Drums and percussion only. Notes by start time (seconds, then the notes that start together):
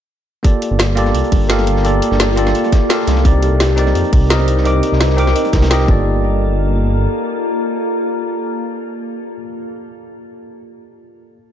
0.44 kick, closed hi-hat
0.62 closed hi-hat
0.79 snare, closed hi-hat
0.97 closed hi-hat
1.06 snare
1.15 closed hi-hat
1.24 closed hi-hat
1.32 kick, closed hi-hat, open hi-hat
1.49 snare, closed hi-hat
1.59 snare
1.67 closed hi-hat
1.76 snare
1.85 closed hi-hat
2.02 closed hi-hat
2.12 snare
2.20 snare, closed hi-hat
2.29 snare
2.37 closed hi-hat
2.46 snare
2.55 closed hi-hat
2.64 snare, closed hi-hat
2.72 kick, snare, closed hi-hat
2.90 snare, closed hi-hat
2.99 snare
3.07 snare, closed hi-hat
3.17 snare
3.25 kick, closed hi-hat
3.42 closed hi-hat
3.60 snare, closed hi-hat
3.77 closed hi-hat
3.87 snare
3.95 closed hi-hat
4.04 closed hi-hat
4.13 kick, closed hi-hat, open hi-hat
4.30 snare, closed hi-hat
4.39 snare
4.48 closed hi-hat
4.57 snare
4.65 closed hi-hat
4.83 closed hi-hat
4.92 snare
5.00 snare, closed hi-hat
5.10 snare
5.18 closed hi-hat
5.27 snare
5.35 closed hi-hat
5.45 snare, closed hi-hat
5.53 kick, snare, closed hi-hat
5.62 snare, closed hi-hat
5.71 snare, closed hi-hat
5.80 snare
5.88 kick